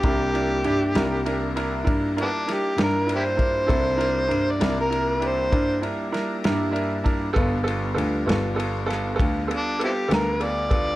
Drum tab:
RD |xxxxxxxxxxxx|xxxxxxxxxxxx|xxxxxxxxxxxx|
SD |---o----oo--|---o----oo--|---o-o---o--|
BD |o-----o----o|o-----o----o|o-----o----o|